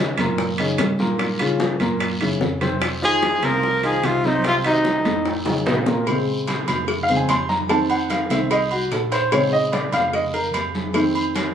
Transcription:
Already playing: D#2 C#3 C#4 D#4
0.18 F#2 A#2 A#3 A#4, high bongo, low conga, high timbale, short guiro
0.38 high bongo, high conga, long guiro
0.58 C#3 C#4 D#4, high conga, high timbale
0.78 G2, high bongo, low bongo, high conga, high timbale, low timbale, short guiro
0.99 A#2 A#3 A#4, high bongo, high conga, short guiro
1.19 A#2 A#3 A#4, high bongo, high conga, high timbale, long guiro
1.39 C#3 C#4 F4, high bongo, high conga, high timbale
1.60 high bongo, high conga, short guiro
1.80 F#2 A#2 A#3 A#4, high bongo, high conga, high timbale, short guiro
2.00 high bongo, high conga, high timbale, long guiro
2.21 F#2 C#3 C#4 E4, high conga, high timbale
2.41 F2, high bongo, low bongo, high conga, short guiro
2.61 C3 C4 C5, high bongo, high conga, high timbale, short guiro
2.82 high bongo, high conga, high timbale, long guiro
3.02 D#3 F3 D#4 F4 G#4, high bongo, high conga
3.23 high bongo, high conga, high timbale, short guiro
3.42 C2 C3 F3 C4 A#4 C5, high bongo, low conga, high timbale, short guiro
3.63 high bongo, high conga, long guiro
3.83 D#3 F3 D#4 F4 G#4, high conga, high timbale
4.03 C2 C3 F4, high bongo, low bongo, high conga, high timbale, short guiro
4.24 C3 C4 D#4 C5, high bongo, high conga, short guiro
4.44 C3 C4 F4 C5, high bongo, high conga, high timbale, long guiro
4.64 C3 D#3 D#4 F#4, high bongo, high conga, high timbale
4.85 high bongo, high conga, short guiro
5.05 F2 A2 A3 A4, high bongo, high conga, high timbale, short guiro
5.25 high bongo, high conga, high timbale, long guiro
5.45 C#3 C#4 D#4, high bongo, high conga, high timbale
5.66 A#1, low conga, low timbale, short guiro
5.86 A#2 A#3 A#4, low bongo, low conga, low timbale, short guiro
6.07 C#3 G#3 C4, cowbell, high conga, low agogo, long guiro
6.28 high conga
6.47 cowbell, high conga, low agogo, short guiro
6.68 F2, cowbell, low conga, low agogo, short guiro
6.88 cowbell, high conga, long guiro
7.03 F5
7.09 C#3 G#3 C4, low agogo
7.16 G#5
7.29 F2 C6, cowbell, high conga, low timbale, low agogo, short guiro
7.49 A#5, high conga, short guiro
7.69 D#3 A3 C4 A5, cowbell, high conga, low agogo, long guiro
7.90 F#5, high conga, low agogo
8.10 F5, cowbell, high conga, low agogo, short guiro
8.30 C2 D#3 A3 C4 E5, cowbell, high conga, low agogo, short guiro
8.51 D#5, cowbell, high conga, low agogo, long guiro
8.71 F#4, high conga, low agogo
8.91 A#1 A4, cowbell, high conga, low timbale, short guiro
9.12 C5, cowbell, low agogo, short guiro
9.32 C#3 G#3 C4 C#5, cowbell, high conga, low agogo, long guiro
9.53 D#5, high conga
9.72 D5, cowbell, high conga, low agogo, short guiro
9.92 F2 F5, cowbell, low conga, low agogo, short guiro
10.13 D#5, cowbell, high conga, long guiro
10.34 A#4, high conga, low agogo
10.54 F2, cowbell, high conga, low timbale, low agogo, short guiro
10.75 high conga, short guiro
10.94 D#3 A3 C4, cowbell, high conga, low agogo, long guiro
11.15 high conga, low agogo
11.35 cowbell, high conga, low agogo, short guiro

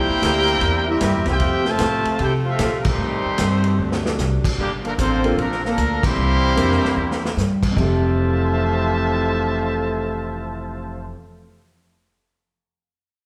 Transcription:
Already playing: C3 G3 A#3 D4 E4 G4 A#4 C5 G5
0.09 G1
0.22 D2, kick, snare, hi-hat pedal, ride
0.48 ride
0.61 E2, kick, ride
0.88 G3 A#3 C4 E4 G4 A#4 E5
1.01 G2, kick, snare, hi-hat pedal, ride
1.15 E2
1.26 C2 C4 F4 G4 C5 E5 G5, snare, ride
1.40 F2 C3 F3 A3 F4, kick, ride
1.65 C3 F3 A3 F4 C5 E5 A5, snare
1.78 A2, kick, snare, hi-hat pedal, ride
2.05 muted upright bass stroke, ride
2.19 C3 E4 G4 A4 C5 G5, kick, ride
2.44 A3 C4 F4
2.49 C4 A4 E5 F5
2.59 A#2, kick, snare, hi-hat pedal, ride
2.81 D#3 A#4, crash
2.85 G3 A3 C4 D#4 G4 C5, kick
2.98 A2 G3 D#4
3.25 muted upright bass stroke
3.38 G2, kick, snare, hi-hat pedal, ride
3.64 ride
3.79 D2 C3 F#3 D4
3.92 snare
4.06 snare
4.18 C2, snare, hi-hat pedal
4.44 kick, crash
4.58 G1 A#2 D3 G3 A#3 D4 G4, kick
4.84 D3 F3 A3 A#3 D4 A#4, ride
4.98 A1 D3 F3 A#3 C4 F4 A4 C5, kick, hi-hat pedal, ride
5.24 A#3 C4 D4 F4 A4, ride
5.38 A#1 D3 F3 A3 A#3 D4 A#4, kick, ride
5.51 snare
5.63 D3 F3 A#3 D4 A4 A#4, snare
5.78 D2, kick, hi-hat pedal, ride
6.03 E3 G3 A#3 C4 E4 G4 C5, kick, crash
6.16 C2
6.56 F2 A#3 C4 D4 E4 G4, kick, hi-hat pedal, ride
6.71 snare
6.83 muted upright bass stroke, snare
6.96 E2
7.11 snare
7.25 snare
7.37 G2, snare, hi-hat pedal
7.63 kick, crash
7.71 F2 C3
7.75 F1 C3 E3 A3 F4 C5 E5 A5, kick, crash
7.80 G4 A4

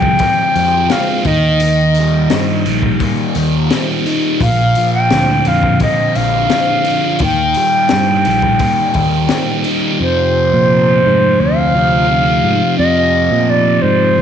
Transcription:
Already playing: C2 F3 G#3 G5
0.02 kick
0.19 C4, kick, open hi-hat
0.54 F2 F3, open hi-hat
0.90 G#3 F5, snare, open hi-hat
1.25 D#2 D#3 D#5, kick, open hi-hat
1.60 D#3, open hi-hat
1.95 G3, open hi-hat
2.30 G2 D#3, snare, open hi-hat
2.66 A#1 G3, open hi-hat
2.82 kick
3.00 A#3, kick, open hi-hat
3.35 D#2 D#3, open hi-hat
3.71 G3, snare, open hi-hat
4.06 D#4, open hi-hat
4.40 A#1 A#2 F5, kick, open hi-hat
4.75 F3, open hi-hat
4.94 G5
5.11 D2 D3, snare, open hi-hat
5.45 F2 F3 F5, open hi-hat
5.63 kick
5.80 C4 D#5, kick, open hi-hat
6.15 A#1 D3 F5, open hi-hat
6.50 F3, snare, open hi-hat
6.85 D4, open hi-hat
7.19 D#2 D#3, kick, open hi-hat
7.24 G5
7.54 G3, open hi-hat
7.89 G2 D#3, snare, open hi-hat
8.25 A#1 G3, open hi-hat
8.42 kick
8.59 A#3, kick, open hi-hat
8.94 D#2 D#3, kick, open hi-hat
9.29 G3, snare, open hi-hat
9.64 D#4, open hi-hat
9.99 F2 C3 F3 C5
10.53 A#2
11.06 G#2
11.40 D2 F5
11.75 F2 C3 F3
12.08 F2 C3 F3
12.44 G#2
12.78 F2 C3 F3 D#5
13.31 A#2
13.50 D5
13.82 G#2 C5
14.18 D2

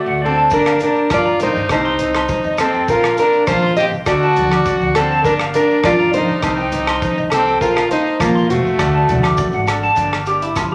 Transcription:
Already playing: A3 F#4
0.06 D2 F#5
0.22 C4 D4 F#4 D5
0.26 C4 A4
0.37 A5
0.50 G1 F3 A#3 D4 G4 A#4 D5, kick, muted conga, maracas
0.55 D4
0.66 F5, cross-stick, low agogo, maracas
0.79 G4, closed hi-hat, maracas
0.83 A#3 D4 A#4
0.96 maracas
1.10 G2 F4 A#4 D5, kick, cross-stick, high conga, low agogo, maracas
1.26 A#5, maracas
1.39 A#3 D4 D#4 G4 A#4 C5, closed hi-hat, muted conga, high conga, maracas
1.44 D#4
1.56 G2, maracas
1.69 C2 G3 C4 D#4 G4 C5, kick, cross-stick, muted conga, low agogo, maracas
1.85 C6, maracas
1.99 C2 D#4 C5, closed hi-hat, muted conga, maracas
2.03 C4
2.15 C6, cross-stick, low agogo
2.28 C5, kick, high conga, maracas
2.44 F2 D#5, maracas
2.57 C4 D#4 G4 A4, cross-stick, closed hi-hat, low agogo, maracas
2.74 G5, maracas
2.87 A#1 F3 A#3 C4 F4 A#4 C5, kick, muted conga, maracas
2.91 F4
3.04 F5, cross-stick, low agogo, maracas
3.17 A#3 C4 D4 F4 A#4, closed hi-hat, maracas
3.33 maracas
3.47 A#2 F4 C5, kick, cross-stick, high conga, low agogo, maracas
3.62 C6, maracas
3.77 A#3 C4 F4 G4 C5 D#5, closed hi-hat, muted conga, maracas
3.91 C2, maracas
4.06 D2 A3 D4 F#4 D5, kick, cross-stick, muted conga, low agogo, maracas
4.10 F#4
4.22 A5, maracas
4.36 D2 F#4 D5, closed hi-hat, muted conga, high conga, maracas
4.41 D4
4.51 D6, cross-stick, low agogo
4.65 D5, kick, high conga, maracas
4.80 D2 F#5, maracas
4.95 C4 D4 F#4 A4 D5, cross-stick, closed hi-hat, low agogo, maracas
5.11 A5, maracas
5.24 G1 F3 A#3 D4 G4 A#4, kick, muted conga, maracas
5.40 F5, cross-stick, low agogo, maracas
5.53 D4 A#4, closed hi-hat, maracas
5.57 A#3 D4
5.71 maracas
5.83 G2 F4 A#4 D5, kick, cross-stick, high conga, low agogo, maracas
6.00 A#5, maracas
6.13 A#3 D4 D#4 G4 A#4 C5, closed hi-hat, muted conga, high conga, maracas
6.28 B1, maracas
6.43 C2 G3 C4 D#4 G4 C5, kick, cross-stick, low agogo, maracas
6.58 G5, maracas
6.72 C2 C4 D#4 G4 C5, closed hi-hat, muted conga, maracas
6.87 C6, cross-stick, low agogo
7.02 C5, kick, high conga, maracas
7.18 C2 D#5, maracas
7.30 C4 G4 A4 C5, muted clean electric guitar stroke, cross-stick, closed hi-hat, low agogo, maracas
7.47 G5, maracas
7.60 A#1 F3 A#3 C4 F4 A#4 C5, kick, maracas
7.76 F5, cross-stick, low agogo, maracas
7.89 A#3 D#4 F4 C5, muted clean electric guitar stroke, closed hi-hat, maracas
7.93 D#4
8.06 maracas
8.19 A#2 A#3 F4 C5, kick, cross-stick, high conga, low agogo, maracas
8.35 C6, maracas
8.47 A#3 C4 F4 F#4 C5, closed hi-hat, low conga, maracas
8.52 A3
8.64 C2, maracas
8.77 D2 A3 D4 F#4 D5, kick, cross-stick, muted conga, low agogo, maracas
8.94 A5
9.07 D2 D4 F#4 D5, closed hi-hat, muted conga, high conga, low conga, maracas
9.23 D6, cross-stick, low agogo, maracas
9.37 D5, kick, high conga, maracas
9.52 G#1 F#5, maracas
9.66 D4 F#4 A4, cross-stick, closed hi-hat, low agogo, maracas
9.83 A5, maracas
9.95 G1 F3 A#3 D4 G4, kick, closed hi-hat, muted conga, maracas
10.13 cross-stick, low agogo
10.26 A#3 D4 G4, closed hi-hat, maracas
10.42 E4, closed hi-hat
10.56 G1 F4, kick, cross-stick, closed hi-hat, high conga, low agogo, maracas

